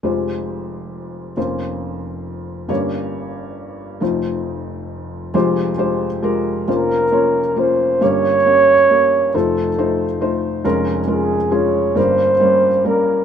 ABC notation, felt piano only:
X:1
M:6/8
L:1/8
Q:3/8=45
K:Fm
V:1 name="Felt piano"
[A,FGc]3 [B,DFc]3 | [B,DGd]3 [=A,EFc]3 | [A,FGc] [A,FGc] [A,FGB] [B,DFc] [B,DFd] [B,DFc] | [B,DGd] [B,DGd] [B,DGd] [=A,EFc] [A,EFc] [A,EFc] |
[A,DFB] [A,DFB] [A,DFA] [G,B,DB] [G,B,Dd] [G,B,DB] |]
V:2 name="Felt piano" clef=bass
[F,,,F,,]3 [F,,,F,,]3 | [G,,,G,,]3 [F,,,F,,]3 | [F,,,F,,]3 [F,,,F,,]3 | [G,,,G,,]3 [F,,,F,,]3 |
[F,,,F,,]3 [G,,,G,,]3 |]